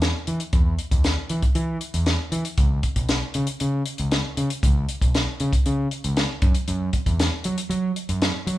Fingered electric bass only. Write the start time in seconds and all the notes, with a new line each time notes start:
Already playing: E2
0.28 E3
0.53 E2
0.92 D#2
1.30 E3
1.55 E3
1.94 E2
2.32 E3
2.58 C#2
2.96 B1
3.35 C#3
3.61 C#3
3.99 C#2
4.37 C#3
4.63 C#2
5.01 B1
5.40 C#3
5.66 C#3
6.04 C#2
6.42 F#2
6.68 F#2
7.06 E2
7.45 F#3
7.70 F#3
8.09 F#2
8.47 F#3